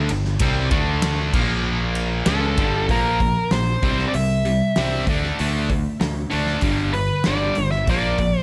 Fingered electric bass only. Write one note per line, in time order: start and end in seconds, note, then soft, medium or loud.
0.11 0.40 G1 medium
0.41 0.70 C2 loud
0.72 1.30 D2 loud
1.33 2.23 A#1 medium
2.27 2.56 C#2 medium
2.58 2.87 G1 medium
2.89 3.36 A#1 medium
3.52 3.75 A#1 medium
3.83 4.06 C2 medium
4.14 4.61 C2 medium
4.77 5.07 C2 medium
5.07 5.30 D2 medium
5.40 5.86 D2 medium
6.01 6.24 D2 medium
6.33 6.56 D2 medium
6.63 7.09 G1 medium
7.27 7.50 G1 medium
7.58 7.88 G1 medium
7.88 8.34 A#1 medium